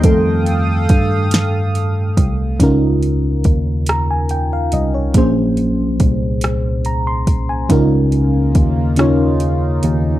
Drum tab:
HH |xxxxxx|xxxxxx|xxxxxx|xxxxxx|
SD |---o--|---r--|---r--|---r--|
BD |o-o--o|o-o---|o-o--o|o-o---|